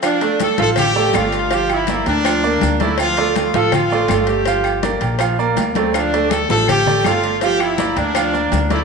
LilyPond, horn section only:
\new Staff \with { instrumentName = "Horn section" } { \time 4/4 \key d \minor \tempo 4 = 163 d'4 a'8 a'8 g'4 f'4 | g'8 e'4 d'2 e'8 | f'4 f'8 a'8 f'4. g'8~ | g'4 r2 r8 c'8 |
d'4 a'8 a'8 g'4 f'4 | g'8 e'4 d'2 e'8 | }